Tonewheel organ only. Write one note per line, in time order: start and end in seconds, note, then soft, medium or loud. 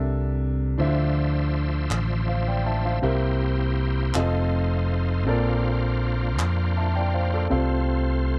0.79 2.99 F3 medium
0.79 2.99 D4 medium
0.79 2.99 C5 medium
0.79 2.99 E5 medium
3.03 4.15 A#3 medium
3.03 4.15 E4 medium
3.03 4.15 G4 medium
3.03 4.13 C5 medium
4.14 5.27 A3 medium
4.14 5.27 D#4 medium
4.14 5.25 F4 medium
4.14 5.26 C5 medium
5.27 7.48 A#3 medium
5.27 7.48 D4 medium
5.27 7.48 F4 medium
5.27 7.48 C5 medium
7.51 7.58 G3 medium
7.51 8.39 C4 medium
7.51 8.39 F4 medium
7.51 8.39 C5 medium
7.58 8.39 A3 medium